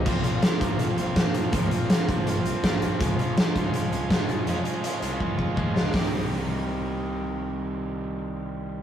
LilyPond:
<<
  \new Staff \with { instrumentName = "Overdriven electric guitar" } { \time 4/4 \key c \minor \tempo 4 = 163 <bes, f bes c' f'>8 <bes c' f'>8 <bes, f bes c' f'>8 <bes c' f'>4. <f bes c' f'>8 <bes c' f'>8 | <bes, f bes c' f'>8 <bes c' f'>8 <bes, f bes c' f'>8 <bes c' f'>4. <f bes c' f'>8 <bes c' f'>8 | <des f aes des' f'>8 <aes des' f'>8 <des f aes des' f'>8 <aes des' f'>4. <f aes des' f'>8 <aes des' f'>8 | <des f aes des' f'>8 <aes des' f'>8 <des f aes des' f'>8 <aes des' f'>4. <f aes des' f'>8 <aes des' f'>8 |
<c g c' ees' g'>1~ | <c g c' ees' g'>1 | }
  \new Staff \with { instrumentName = "Overdriven electric guitar" } { \time 4/4 \key c \minor <bes, f bes c' f'>8 <bes c' f'>8 <f bes c' f'>8 <bes, f bes c' f'>8 <f bes c' f'>8 <bes c' f'>8 <bes, f bes c' f'>8 <bes c' f'>8 | <bes, f bes c' f'>8 <bes c' f'>8 <f bes c' f'>8 <bes, f bes c' f'>8 <f bes c' f'>8 <bes c' f'>8 <bes, f bes c' f'>8 <bes c' f'>8 | <des f aes des' f'>8 <aes des' f'>8 <f aes des' f'>8 <des f aes des' f'>8 <f aes des' f'>8 <aes des' f'>8 <des f aes des' f'>8 <aes des' f'>8 | <des f aes des' f'>8 <aes des' f'>8 <f aes des' f'>8 <des f aes des' f'>8 <f aes des' f'>8 <aes des' f'>8 <des f aes des' f'>8 <aes des' f'>8 |
<c ees g ees' g'>1~ | <c ees g ees' g'>1 | }
  \new Staff \with { instrumentName = "Fingered electric bass" } { \clef bass \time 4/4 \key c \minor bes,,8 r4 bes,,8 r8 bes,,8. bes,8 r16 | d,8 r4 g,,4 c,16 r16 bes,,8 bes,,16 r16 | des,8 r4 des,8 r8 des,8. des8 r16 | f,8 r4 c,4 f,16 r16 ees,8 des,8 |
c,1~ | c,1 | }
  \new DrumStaff \with { instrumentName = "Drums" } \drummode { \time 4/4 <cymc bd>8 hh8 <hh sn>8 <hh bd>8 hh8 hh8 <hh bd sn>8 hh8 | <hh bd>8 hh8 <hh sn>8 <hh bd>8 hh8 hh8 <hh bd sn>8 hh8 | <hh bd>8 hh8 <hh sn>8 <hh bd>8 hh8 hh8 <hh bd sn>8 hh8 | hh8 hh8 hh8 hh8 bd8 bd8 bd8 sn8 |
<hho bd sn>4 r4 r4 r4 | r4 r4 r4 r4 | }
>>